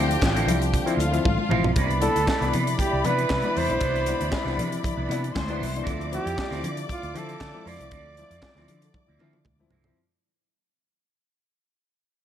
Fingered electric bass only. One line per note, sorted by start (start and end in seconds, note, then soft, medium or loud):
0.00 0.15 D2 loud
0.22 0.42 A1 medium
0.46 0.77 C2 loud
0.97 1.18 D2 loud
1.26 1.36 A1 medium
1.49 1.60 A1 loud
1.62 1.72 B1 medium
1.76 2.07 C2 loud
2.16 2.25 D2 medium
2.41 2.50 C2 loud
2.54 2.73 C3 loud
2.93 3.02 C2 medium
3.05 3.25 C3 loud
3.30 3.41 C3 medium
3.57 3.67 E2 medium
3.69 3.79 B1 medium
3.81 4.12 C2 medium
4.21 4.30 D2 medium
4.45 4.59 C2 medium
4.58 4.78 C3 medium
4.97 5.07 C2 loud
5.09 5.29 C3 loud
5.36 5.62 D2 medium
5.61 5.81 C2 loud
5.87 6.17 D2 medium
6.26 6.35 F2 medium
6.51 6.60 D2 medium
6.64 6.83 D3 loud
7.03 7.12 D2 loud
7.15 7.35 D3 loud
7.41 7.51 D3 medium
7.66 7.76 F2 medium
7.79 7.89 C2 medium
7.92 8.22 D2 loud
8.31 8.40 F2 medium
8.55 8.65 D2 loud
8.68 8.88 D3 loud
9.09 9.17 D2 loud
9.19 9.39 D3 loud
9.46 9.65 D2 medium
9.70 9.90 C2 medium